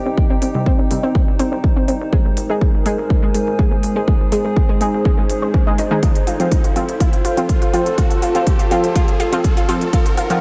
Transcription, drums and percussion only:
0.18 kick
0.42 open hi-hat
0.55 mid tom
0.66 kick, mid tom
0.91 open hi-hat, mid tom
1.15 kick, mid tom
1.39 mid tom, open hi-hat
1.64 kick
1.88 open hi-hat, mid tom
2.13 kick, mid tom
2.37 open hi-hat
2.61 kick
2.86 mid tom, open hi-hat
3.10 kick, mid tom
3.34 open hi-hat
3.47 mid tom
3.59 kick, mid tom
3.83 open hi-hat, mid tom
4.08 kick, mid tom
4.32 mid tom, open hi-hat
4.45 mid tom
4.56 kick
4.81 open hi-hat, mid tom
5.05 kick, mid tom
5.30 open hi-hat
5.54 kick
5.78 mid tom, open hi-hat
6.03 kick, closed hi-hat, mid tom
6.15 closed hi-hat
6.27 mid tom, open hi-hat
6.40 closed hi-hat
6.52 kick, closed hi-hat, mid tom
6.64 closed hi-hat
6.76 open hi-hat, mid tom
6.89 closed hi-hat
7.00 kick, closed hi-hat, mid tom
7.13 closed hi-hat
7.25 open hi-hat, mid tom
7.37 closed hi-hat
7.49 kick, closed hi-hat, mid tom
7.62 closed hi-hat
7.74 mid tom, open hi-hat
7.86 closed hi-hat
7.98 kick, closed hi-hat, mid tom
8.11 closed hi-hat
8.22 open hi-hat, mid tom
8.35 closed hi-hat
8.47 kick, closed hi-hat, mid tom
8.59 closed hi-hat
8.71 open hi-hat, mid tom
8.84 closed hi-hat
8.96 kick, closed hi-hat, mid tom
9.08 closed hi-hat
9.20 mid tom, open hi-hat
9.33 closed hi-hat
9.44 kick, closed hi-hat, mid tom
9.57 closed hi-hat
9.69 open hi-hat, mid tom
9.81 closed hi-hat
9.93 kick, closed hi-hat, mid tom
10.06 closed hi-hat, mid tom
10.17 open hi-hat, mid tom
10.30 closed hi-hat, mid tom

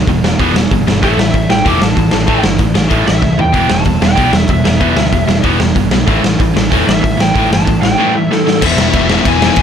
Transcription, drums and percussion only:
0.07 kick, open hi-hat
0.24 snare
0.40 kick, open hi-hat
0.56 snare
0.71 kick, open hi-hat
0.88 snare
1.03 kick, open hi-hat
1.19 snare
1.34 kick, open hi-hat
1.50 snare
1.66 kick, open hi-hat
1.82 snare
1.97 kick, open hi-hat
2.11 snare
2.27 kick, open hi-hat
2.44 snare
2.58 kick, open hi-hat
2.75 snare
2.90 kick, open hi-hat
3.08 snare
3.22 kick, snare
3.39 floor tom
3.53 kick, open hi-hat
3.70 snare
3.85 kick, open hi-hat
4.02 snare
4.17 kick, open hi-hat
4.33 snare
4.48 kick, open hi-hat
4.65 snare
4.81 kick, open hi-hat
4.97 snare
5.13 kick, open hi-hat
5.29 snare
5.43 kick, open hi-hat
5.60 snare
5.76 kick, open hi-hat
5.91 snare
6.08 kick, open hi-hat
6.24 snare
6.40 kick, open hi-hat
6.57 snare
6.72 kick, open hi-hat
6.89 snare
7.04 kick, open hi-hat
7.20 snare
7.36 kick, open hi-hat
7.53 snare
7.67 kick, open hi-hat
7.83 snare
8.31 snare
8.47 snare
8.62 kick, crash
8.78 snare
8.93 kick, crash
9.09 snare
9.25 kick, crash
9.42 snare
9.56 kick, crash

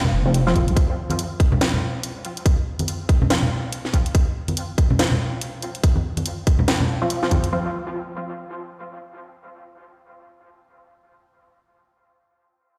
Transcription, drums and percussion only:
0.05 low conga
0.34 closed hi-hat
0.47 snare
0.55 kick, closed hi-hat, high conga
0.68 closed hi-hat
0.77 kick, closed hi-hat
1.10 closed hi-hat, high conga
1.19 closed hi-hat
1.40 kick, closed hi-hat
1.52 low conga
1.61 snare, closed hi-hat
1.74 low conga
2.03 closed hi-hat
2.25 closed hi-hat
2.37 closed hi-hat
2.46 kick, closed hi-hat
2.79 closed hi-hat, high conga
2.88 closed hi-hat
3.09 kick, closed hi-hat
3.22 low conga
3.30 snare, closed hi-hat
3.43 low conga
3.72 closed hi-hat
3.85 snare
3.94 kick, closed hi-hat
4.06 closed hi-hat
4.15 kick, closed hi-hat
4.48 closed hi-hat, high conga
4.57 closed hi-hat
4.78 kick, closed hi-hat
4.90 low conga
4.99 snare, closed hi-hat
5.11 low conga
5.41 closed hi-hat
5.62 closed hi-hat
5.75 closed hi-hat
5.84 kick, closed hi-hat
5.96 high conga
6.17 closed hi-hat, high conga
6.26 closed hi-hat
6.47 kick, closed hi-hat
6.59 low conga
6.68 snare, closed hi-hat
6.80 low conga
7.10 closed hi-hat
7.23 snare
7.31 kick, closed hi-hat, high conga
7.44 closed hi-hat

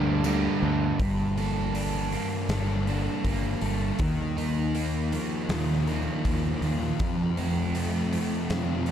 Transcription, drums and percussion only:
0.24 tambourine, crash
1.00 kick, open hi-hat
1.37 open hi-hat
1.75 open hi-hat
2.12 open hi-hat
2.49 snare, open hi-hat
2.87 open hi-hat
3.25 kick, open hi-hat
3.61 open hi-hat
3.99 kick, open hi-hat
4.38 open hi-hat
4.75 open hi-hat
5.12 open hi-hat
5.49 snare, open hi-hat
5.87 open hi-hat
6.25 kick, open hi-hat
6.62 open hi-hat
7.00 kick, open hi-hat
7.37 open hi-hat
7.75 open hi-hat
8.13 open hi-hat
8.50 snare, open hi-hat
8.86 open hi-hat

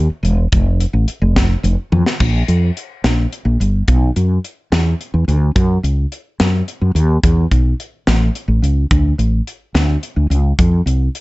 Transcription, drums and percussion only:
0.25 closed hi-hat
0.52 kick, closed hi-hat
0.80 closed hi-hat
1.08 closed hi-hat
1.36 kick, snare, closed hi-hat
1.64 closed hi-hat
1.92 high tom
2.06 snare
2.20 kick, crash
2.48 closed hi-hat
2.77 closed hi-hat
3.04 snare, closed hi-hat
3.33 closed hi-hat
3.61 closed hi-hat
3.88 kick, closed hi-hat
4.16 closed hi-hat
4.44 closed hi-hat
4.72 snare, closed hi-hat
5.01 closed hi-hat
5.28 closed hi-hat
5.56 kick, closed hi-hat
5.84 closed hi-hat
6.12 closed hi-hat
6.40 snare, closed hi-hat
6.68 closed hi-hat
6.96 closed hi-hat
7.24 kick, closed hi-hat
7.51 kick, closed hi-hat
7.80 closed hi-hat
8.07 snare, closed hi-hat
8.35 closed hi-hat
8.64 closed hi-hat
8.91 kick, closed hi-hat
9.19 closed hi-hat
9.47 closed hi-hat
9.75 snare, closed hi-hat
10.03 closed hi-hat
10.31 closed hi-hat
10.59 kick, closed hi-hat
10.87 closed hi-hat
11.15 closed hi-hat

